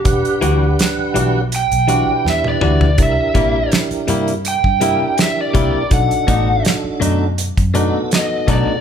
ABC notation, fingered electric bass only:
X:1
M:4/4
L:1/16
Q:1/4=82
K:Em
V:1 name="Fingered electric bass" clef=bass
E,,, z D,,2 z2 B,,,3 B,,,2 z E,,2 D,,2 | C,, z _B,,,2 z2 G,,3 G,,2 z3 C,, z | B,,, z A,,,2 z2 F,,3 F,,2 z3 B,,, z |]